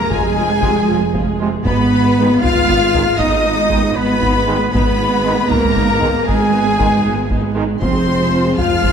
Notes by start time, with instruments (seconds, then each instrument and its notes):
Already playing: cello section A#3, trumpet section A#4, violin section A#4 A#5
0.00 viola section G#3 G#4
0.10 double bass section F1, viola section F3 F4, french horn section G#3, cello section G#3, trumpet section G#4, violin section G#4 G#5, taiko
0.25 viola section G#3 G#4
0.37 viola section F3 F4
0.50 viola section G#3 G#4, taiko rim
0.61 trombone section C3 G#3, viola section F3 F4, taiko
0.75 viola section G#3 G#4, taiko rim
0.88 double bass section F1, viola section F3 F4
1.01 viola section G#3 G#4
1.13 viola section F3 F4, taiko
1.27 viola section G#3 G#4
1.39 trombone section C3 G#3, viola section F3 F4
1.52 viola section G#3 G#4
1.64 double bass section G#1, cello section B3, viola section B3 D#4, french horn section B3, trumpet section B4, violin section B4 B5, taiko
1.78 viola section G#3 B3
1.91 viola section B3 D#4
2.04 viola section G#3 B3
2.17 trombone section D#3 G#3, viola section B3 D#4
2.29 viola section G#3 B3
2.42 double bass section G#1, viola section B3 D#4, cello section F4, french horn section F4, trumpet section F5, violin section F5 F6, taiko low
2.55 viola section G#3 B3, taiko low
2.68 viola section B3 D#4, taiko
2.81 viola section G#3 B3
2.94 trombone section D#3 G#3, viola section B3 D#4, taiko low
3.07 viola section G#3 B3
3.17 double bass section G#1, viola section B3 D#4, french horn section D#4, cello section D#4, trumpet section D#5, violin section D#5 D#6, taiko
3.32 viola section G#3 B3
3.44 viola section B3 D#4
3.57 viola section G#3 B3
3.69 trombone section D#3 G#3, viola section B3 D#4, taiko
3.83 viola section G#3 B3
3.95 double bass section G#1, french horn section B3, viola section B3 D#4, cello section B3, trumpet section B4, violin section B4 B5
4.08 viola section G#3 B3
4.21 viola section B3 D#4, taiko
4.33 viola section G#3 B3
4.46 trombone section D#3 G#3, viola section B3 D#4
4.57 viola section G#3 B3
4.72 double bass section G#1, viola section B3 D#4, french horn section B3, cello section B3, trumpet section B4, violin section B4 B5, taiko
4.83 viola section G#3 B3
4.98 viola section B3 D#4
5.10 viola section G#3 B3
5.23 trombone section D#3 G#3, viola section B3 D#4
5.35 viola section G#3 B3
5.48 double bass section G#1, cello section A#3, french horn section A#3, viola section B3 D#4, trumpet section A#4, violin section A#4 A#5, taiko low
5.61 viola section G#3 B3, taiko low
5.75 viola section B3 D#4, taiko
5.88 viola section G#3 B3
5.99 trombone section D#3 G#3, viola section B3 D#4, taiko low
6.14 viola section G#3 B3
6.26 double bass section G#1, french horn section G#3, cello section G#3, viola section B3 D#4, trumpet section G#4, violin section G#4 G#5, taiko
6.39 viola section G#3 B3
6.53 viola section B3 D#4
6.66 viola section G#3 B3
6.77 trombone section D#3 G#3, viola section B3 D#4, taiko
6.91 viola section G#3 B3
7.04 double bass section G#1, viola section B3 D#4
7.16 viola section G#3 B3
7.30 viola section B3 D#4, taiko
7.43 viola section G#3 B3
7.54 trombone section D#3 G#3, viola section B3 D#4
7.68 viola section G#3 B3
7.80 double bass section F1, viola section F3 F4, trombone section F3 G#3, french horn section C4, cello section C4, trumpet section C5, violin section C5 C6, taiko
7.94 viola section G#3 G#4
8.07 viola section F3 F4
8.19 viola section G#3 G#4
8.32 viola section F3 F4
8.44 viola section G#3 G#4
8.58 double bass section F1, viola section F3 F4, french horn section F4, cello section F4, trumpet section F5, violin section F5 F6, taiko low
8.71 viola section G#3 G#4, taiko low
8.83 viola section F3 F4, taiko